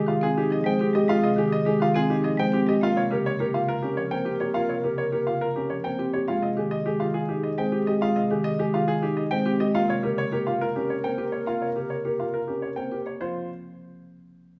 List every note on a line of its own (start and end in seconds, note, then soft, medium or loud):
0.00 0.12 G#3 medium
0.00 0.13 G4 medium
0.00 0.12 G#4 medium
0.00 2.64 G#4 medium
0.07 0.26 D#3 medium
0.07 0.27 F4 medium
0.07 0.27 F5 medium
0.21 0.41 C4 medium
0.21 0.41 G#4 medium
0.38 0.56 D#4 medium
0.38 0.56 G4 medium
0.50 0.70 F3 medium
0.50 0.70 D#5 medium
0.64 0.84 G#3 medium
0.64 0.85 C4 medium
0.64 0.85 G5 medium
0.79 0.99 C4 medium
0.79 0.99 G4 medium
0.93 1.07 G#3 medium
0.93 1.13 G4 medium
0.93 1.13 D#5 medium
1.08 1.27 G#3 medium
1.08 1.28 F4 medium
1.08 1.28 F5 medium
1.22 1.42 C3 medium
1.22 1.42 D#5 medium
1.36 1.56 D#3 medium
1.36 1.57 G4 medium
1.36 1.57 G#4 medium
1.52 1.71 D#5 medium
1.65 1.85 G#3 medium
1.65 1.85 G4 medium
1.65 1.86 G#4 medium
1.80 2.00 D#3 medium
1.80 2.00 F4 medium
1.80 2.00 F5 medium
1.95 2.14 C4 loud
1.95 2.14 G#4 medium
2.10 2.29 D#4 medium
2.10 2.29 G4 medium
2.24 2.43 F3 medium
2.24 2.43 D#5 medium
2.37 2.57 G#3 medium
2.37 2.58 C4 medium
2.37 2.58 G5 medium
2.52 2.72 C4 medium
2.52 2.72 G4 medium
2.67 2.86 G#3 medium
2.67 2.87 G4 medium
2.67 2.87 D#5 medium
2.81 3.01 A#3 medium
2.81 3.01 F4 medium
2.81 6.04 A#4 medium
2.81 3.01 F5 medium
2.96 3.15 C3 medium
2.96 3.15 C#5 medium
3.11 3.30 C#3 medium
3.11 3.30 G4 medium
3.11 3.30 A#4 medium
3.26 3.44 C#5 medium
3.40 3.58 A#3 medium
3.40 3.59 G4 medium
3.40 3.59 A#4 medium
3.54 3.73 C#3 medium
3.54 3.73 F4 medium
3.54 3.73 F5 medium
3.69 3.87 A#4 medium
3.83 4.02 C#4 medium
3.83 4.02 G4 medium
3.97 4.16 F3 medium
3.97 4.16 C#5 medium
4.11 4.30 A#3 medium
4.11 4.31 C4 medium
4.11 4.30 G5 medium
4.25 4.45 C4 medium
4.25 4.45 G4 medium
4.40 4.54 A#3 medium
4.40 4.60 G4 medium
4.40 4.59 C#5 medium
4.54 4.74 A#3 medium
4.54 4.74 F4 medium
4.54 4.74 F5 medium
4.69 4.88 C3 medium
4.69 4.88 C#5 medium
4.84 5.03 C#3 medium
4.84 5.03 G4 medium
4.84 5.03 A#4 medium
4.98 5.17 C#5 medium
5.12 5.32 A#3 medium
5.12 5.31 G4 medium
5.12 5.32 A#4 medium
5.27 5.46 C#3 medium
5.27 5.46 F4 medium
5.27 5.46 F5 medium
5.41 5.60 A#4 medium
5.56 5.75 C#4 medium
5.56 5.75 G4 medium
5.70 5.89 F3 medium
5.70 5.89 C#5 medium
5.84 6.04 A#3 medium
5.84 6.04 C4 medium
5.84 6.03 G5 medium
5.99 6.18 C4 medium
5.99 6.18 G4 medium
6.13 6.32 A#3 medium
6.13 6.33 G4 medium
6.13 6.32 C#5 medium
6.28 6.47 G#3 medium
6.28 6.47 F4 medium
6.28 9.56 G#4 medium
6.28 6.47 F5 medium
6.42 6.61 C3 medium
6.42 6.61 D#5 medium
6.57 6.76 D#3 medium
6.57 6.76 G4 medium
6.57 6.76 G#4 medium
6.71 6.90 D#5 medium
6.86 7.05 G#3 medium
6.86 7.05 G4 medium
6.86 7.05 G#4 medium
7.00 7.19 D#3 medium
7.00 7.19 F4 medium
7.00 7.19 F5 medium
7.14 7.33 G#4 medium
7.29 7.48 D#4 medium
7.29 7.48 G4 medium
7.43 7.62 D#5 medium
7.58 7.77 G#3 medium
7.58 7.77 C4 medium
7.58 7.77 G5 medium
7.72 7.91 C4 medium
7.72 7.91 G4 medium
7.87 8.00 G#3 medium
7.87 8.06 G4 medium
7.87 8.06 D#5 medium
8.01 8.20 G#3 medium
8.01 8.20 F4 medium
8.01 8.20 F5 medium
8.15 8.34 C3 medium
8.15 8.35 D#5 medium
8.31 8.49 D#3 medium
8.31 8.49 G4 medium
8.31 8.49 G#4 medium
8.44 8.63 D#5 medium
8.59 8.78 G#3 medium
8.59 8.78 G4 medium
8.59 8.78 G#4 medium
8.74 8.92 D#3 medium
8.74 8.93 F4 medium
8.74 8.92 F5 medium
8.88 9.07 G#4 medium
9.03 9.21 D#4 medium
9.03 9.21 G4 medium
9.17 9.35 D#5 medium
9.31 9.50 G#3 medium
9.31 9.50 C4 medium
9.31 9.50 G5 medium
9.46 9.64 C4 medium
9.46 9.64 G4 medium
9.60 9.79 G#3 medium
9.60 9.79 G4 medium
9.60 9.79 D#5 medium
9.75 9.93 A#3 medium
9.75 9.93 F4 medium
9.75 13.02 A#4 medium
9.75 9.93 F5 medium
9.88 10.07 C3 medium
9.88 10.08 C#5 medium
10.03 10.22 C#3 medium
10.03 10.22 G4 medium
10.03 10.22 A#4 medium
10.18 10.37 C#5 medium
10.32 10.51 A#3 medium
10.32 10.51 G4 medium
10.32 10.51 A#4 medium
10.47 10.65 F4 medium
10.47 10.65 F5 medium
10.61 10.80 A#4 medium
10.76 10.94 C#4 medium
10.76 10.94 G4 medium
10.90 11.09 C#5 medium
11.04 11.23 A#3 medium
11.04 11.23 C4 medium
11.04 11.23 G5 medium
11.18 11.37 C4 medium
11.18 11.37 G4 medium
11.32 11.45 A#3 medium
11.32 11.51 C#5 medium
11.46 11.66 A#3 medium
11.46 11.66 F4 medium
11.46 11.66 F5 medium
11.61 11.80 C3 soft
11.61 11.81 C#5 soft
11.76 11.95 C#3 soft
11.76 11.95 G4 soft
11.76 11.95 A#4 soft
11.90 12.09 C#5 medium
12.05 12.24 A#3 soft
12.05 12.24 G4 soft
12.05 12.24 A#4 medium
12.20 12.39 F4 soft
12.20 12.38 F5 soft
12.34 12.53 A#4 medium
12.48 12.67 C#4 soft
12.48 12.67 G4 soft
12.62 12.81 C#5 soft
12.76 12.96 A#3 medium
12.76 12.96 C4 medium
12.76 12.96 G5 medium
12.92 13.10 C4 soft
12.92 13.10 G4 soft
13.06 13.25 A#3 soft
13.06 13.25 C#5 soft
13.21 13.47 F3 medium
13.21 13.48 F4 medium
13.21 13.47 C5 medium